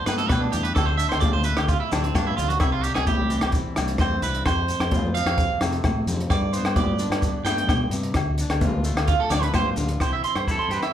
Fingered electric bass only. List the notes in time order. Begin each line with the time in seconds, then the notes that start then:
0.06 G2
0.30 B2
0.53 E2
0.76 D2
1.12 D2
1.34 D2
1.58 D2
1.92 D2
2.15 G2
2.38 D2
2.61 C2
2.97 C2
3.20 C2
3.43 C2
3.77 C2
3.99 E2
4.22 C2
4.45 F2
4.80 F2
5.04 F2
5.26 F2
5.61 F2
5.84 A2
6.06 F2
6.30 G2
6.63 G2
6.87 G2
7.10 G2
7.44 G2
7.69 B2
7.90 G2
8.15 D2
8.50 D2
8.73 D2
8.95 D2
9.30 D2
9.54 G2
9.77 D2
10.01 C2
10.35 G2
10.68 G2